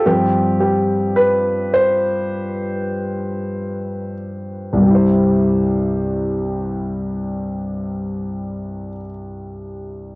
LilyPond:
\new Staff \with { instrumentName = "Grand piano" } { \time 4/4 \key c \major \tempo 4 = 45 <g, f c' g'>8 g'8 b'8 c''2 r8 | <c, g, c g e' c''>1 | }